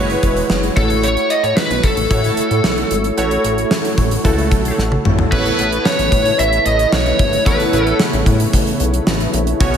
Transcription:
Already playing: analog synth bass F#1, synth keys G#3 E4 F#4 C#5, lead electric guitar B4
0.10 closed hi-hat
0.23 analog synth bass E1, kick, closed hi-hat
0.36 closed hi-hat
0.50 analog synth bass F#1, snare
0.63 closed hi-hat
0.76 analog synth bass A1, synth keys A3 E4 F#4 C#5, lead electric guitar A4, kick, closed hi-hat
0.90 closed hi-hat
1.03 lead electric guitar C#5, closed hi-hat
1.17 closed hi-hat
1.30 lead electric guitar D#5, closed hi-hat
1.43 analog synth bass A2, lead electric guitar C#5, closed hi-hat
1.57 lead electric guitar B4, snare
1.70 analog synth bass B1, closed hi-hat
1.84 lead electric guitar A4, kick, closed hi-hat
1.97 analog synth bass A1, closed hi-hat
2.10 analog synth bass A2, synth keys A3 E4 F#4 C#5, kick, closed hi-hat
2.24 closed hi-hat
2.37 closed hi-hat
2.51 analog synth bass A2, closed hi-hat
2.64 analog synth bass B1, snare
2.77 closed hi-hat
2.91 analog synth bass G#1, closed hi-hat
3.04 closed hi-hat
3.17 analog synth bass A1, synth keys A3 E4 F#4 C#5, closed hi-hat
3.31 closed hi-hat
3.44 analog synth bass A1, closed hi-hat
3.58 closed hi-hat
3.71 snare
3.85 closed hi-hat
3.98 analog synth bass A1, kick, closed hi-hat
4.11 closed hi-hat
4.24 analog synth bass C#2, synth keys A3 E4 F#4 A4, kick, closed hi-hat
4.38 closed hi-hat
4.51 analog synth bass B1, kick, closed hi-hat
4.65 closed hi-hat
4.78 analog synth bass A1, snare
4.92 high tom
5.05 analog synth bass G#1, mid tom
5.19 floor tom
5.31 analog synth bass A1, analog synth pad C#3 A3 B3 E4, synth keys B3 E4 A4 C#5, lead electric guitar B4, kick, crash
5.45 closed hi-hat
5.58 analog synth bass A1, synth keys B3 E4 A4 B4, closed hi-hat
5.72 closed hi-hat
5.85 lead electric guitar C#5, snare
5.99 analog synth bass A1, closed hi-hat
6.12 analog synth bass A2, kick, closed hi-hat
6.25 closed hi-hat
6.39 analog synth bass A1, lead electric guitar E5, closed hi-hat
6.53 closed hi-hat
6.66 analog synth bass A1, lead electric guitar D#5, closed hi-hat
6.79 closed hi-hat
6.92 analog synth bass B1, lead electric guitar C#5, snare
7.06 closed hi-hat
7.19 analog synth bass G#1, kick, closed hi-hat
7.33 closed hi-hat
7.46 analog synth bass A1, synth keys B3 E4 A4 C#5, lead electric guitar B4, kick, closed hi-hat
7.60 closed hi-hat
7.72 analog synth bass A1, synth keys B3 E4 A4 B4, closed hi-hat
7.87 closed hi-hat
8.00 snare
8.13 analog synth bass A1, closed hi-hat
8.26 analog synth bass A2, kick, closed hi-hat
8.40 closed hi-hat
8.53 analog synth bass A1, kick, closed hi-hat
8.67 closed hi-hat
8.80 analog synth bass B1, closed hi-hat
8.94 closed hi-hat
9.07 analog synth bass A1, snare
9.20 closed hi-hat
9.34 analog synth bass A#1, closed hi-hat
9.47 closed hi-hat
9.60 analog synth bass B1, analog synth pad F#3 F#4, synth keys B3 C#4 F#4 C#5, kick, closed hi-hat
9.74 closed hi-hat

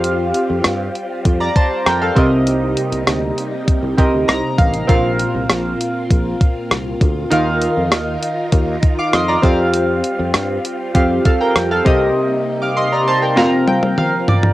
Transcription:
Already playing: fretless electric bass F2, string machine G3 C4 F4, synth keys C4 F4 G4 F5
0.04 closed hi-hat
0.34 closed hi-hat
0.50 fretless electric bass F2
0.64 fretless electric bass G2, cross-stick, closed hi-hat
0.95 closed hi-hat
1.25 fretless electric bass F2, kick, closed hi-hat
1.40 synth keys D5 A#5
1.56 synth keys C5 A5, kick, closed hi-hat
1.86 fretless electric bass F2, synth keys A#4 G5, cross-stick, closed hi-hat
2.02 synth keys A4 F5
2.15 fretless electric bass C2, string machine C3 G3 A#3 D#4, synth keys C3 C4 G4 A#4 D#5, kick, closed hi-hat
2.47 closed hi-hat
2.77 closed hi-hat
2.92 fretless electric bass C2, closed hi-hat
3.07 fretless electric bass D2, cross-stick, closed hi-hat
3.38 closed hi-hat
3.68 kick, closed hi-hat
3.83 fretless electric bass C2
3.97 fretless electric bass C2, synth keys C4 G4 A#4 D#5, kick, closed hi-hat
4.13 fretless electric bass D2
4.28 fretless electric bass C2, synth keys A#5, cross-stick, closed hi-hat
4.58 fretless electric bass A1, synth keys F5, kick, closed hi-hat
4.74 closed hi-hat
4.87 fretless electric bass A#1, synth keys A#2 C4 F4 A#4 F5, string machine C4 F4, kick, closed hi-hat
5.20 closed hi-hat
5.35 fretless electric bass C2
5.50 fretless electric bass A#1, cross-stick, closed hi-hat
5.81 closed hi-hat
6.10 fretless electric bass A#1, kick, closed hi-hat
6.41 kick, closed hi-hat
6.71 fretless electric bass C2, cross-stick, closed hi-hat
7.01 fretless electric bass D2, kick, closed hi-hat
7.30 fretless electric bass D#2, string machine D#3 D#4 A#4, synth keys D#3 D#4 F4 A#4 F5, closed hi-hat
7.62 closed hi-hat
7.77 fretless electric bass F2
7.92 fretless electric bass D#2, cross-stick, closed hi-hat
8.23 closed hi-hat
8.52 fretless electric bass D#2, kick, closed hi-hat
8.83 kick, closed hi-hat
8.99 synth keys F5 D6
9.13 fretless electric bass F2, synth keys D#5 C6, cross-stick, closed hi-hat
9.28 synth keys D5 A#5
9.42 fretless electric bass F2, string machine G3 C4, synth keys C4 F4 G4 F5, kick, closed hi-hat
9.74 closed hi-hat
10.04 closed hi-hat
10.19 fretless electric bass F2
10.34 fretless electric bass G2, cross-stick, closed hi-hat
10.65 closed hi-hat
10.95 fretless electric bass F2, synth keys C4 F4 G4 F5, kick, closed hi-hat
11.25 synth keys A4 F5, kick, closed hi-hat
11.41 synth keys A#4 G5
11.55 fretless electric bass F2, cross-stick, closed hi-hat
11.71 synth keys A4 F5
11.85 fretless electric bass C2, synth keys C3 C4 G4 A#4 D#5, string machine C3 A#3 D#4, kick, closed hi-hat
12.62 synth keys F5 D6
12.77 synth keys D#5 C6
12.92 synth keys D5 A#5
13.07 synth keys C5 A5 C6
13.22 synth keys A#4 G5
13.36 string machine C3 F3, synth keys C4 F4 A#4 F5 A#5, snare
13.68 synth keys G5, high tom
13.83 high tom
13.98 synth keys F5, mid tom
14.28 synth keys D5, floor tom
14.43 floor tom

